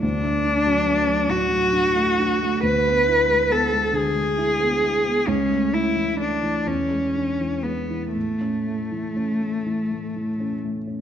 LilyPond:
<<
  \new Staff \with { instrumentName = "Cello" } { \time 6/8 \key a \major \tempo 4. = 44 d'4. fis'4. | b'4 a'8 gis'4. | cis'8 e'8 d'8 cis'4 b8 | a2~ a8 r8 | }
  \new Staff \with { instrumentName = "Grand piano" } { \time 6/8 \key a \major d,16 a16 d'16 fis16 a16 fis16 a,16 fis16 d'16 a16 d'16 a16 | d,16 b16 e'16 gis16 b16 gis16 d16 gis16 e'16 b16 e'16 b16 | cis,16 a16 cis'16 e16 a16 e16 e,16 gis16 d'16 e16 gis16 e16 | a,16 cis'16 a16 e16 cis'16 a16 e16 a16 e16 cis'16 a16 cis'16 | }
>>